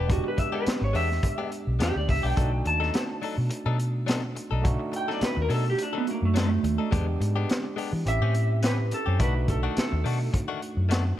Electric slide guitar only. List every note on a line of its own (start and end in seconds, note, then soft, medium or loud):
0.12 0.25 F#4 medium
0.28 0.39 B4 medium
0.39 0.53 E5 medium
0.55 0.82 B4 medium
0.84 0.95 C#5 medium
0.96 1.50 E5 medium
1.83 1.96 G4 medium
1.97 2.09 D5 medium
2.10 2.24 E5 medium
2.26 2.65 G5 medium
2.67 3.77 A5 medium
4.96 5.10 G5 medium
5.13 5.23 D5 medium
5.25 5.38 B4 medium
5.42 5.52 A#4 medium
5.54 5.67 A4 medium
5.70 5.80 G4 medium
5.83 5.95 D4 medium
5.98 6.08 B3 medium
6.11 6.24 A#3 medium
6.25 6.36 A3 medium
6.39 6.92 A3 medium
8.08 8.62 E5 loud
8.66 8.92 B4 medium
8.94 9.20 A4 medium
9.22 9.48 B4 medium
9.50 9.76 A4 medium
9.79 10.33 A4 medium